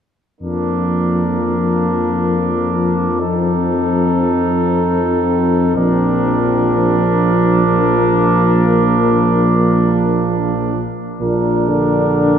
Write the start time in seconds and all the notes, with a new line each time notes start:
0.41 F2 F3 A#3 D4 A#4
3.20 C4 D#4 A4
5.76 A#1 F3 D4 A#4
7.04 A#3
11.21 A#1 A#2 D4 A#4
11.69 D3